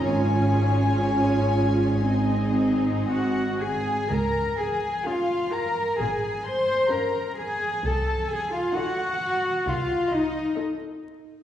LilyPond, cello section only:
\new Staff \with { instrumentName = "Cello section" } { \time 4/4 \key des \major \tempo 4 = 65 aes,2. ges'8 aes'8 | bes'8 aes'8 f'8 bes'8 aes'8 c''8 bes'8 aes'8 | a'8 aes'16 f'16 ges'4 f'8 ees'8 r4 | }